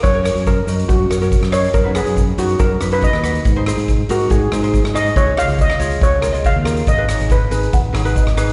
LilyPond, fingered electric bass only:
\new Staff \with { instrumentName = "Fingered electric bass" } { \clef bass \time 4/4 \key fis \major \tempo 4 = 140 fis,8. fis,8. fis,8 fis,8 fis,8. fis,8. | fis,8. fis,8. fis,8 fis,8 fis,8. dis,8. | gis,8. gis,8. gis,8 gis,8 gis,8. gis,8. | cis,8. cis,8. cis,8 cis,8 cis,8. dis,8. |
gis,,8. gis,,8. gis,,8 gis,,8 gis,,8. gis,,8. | }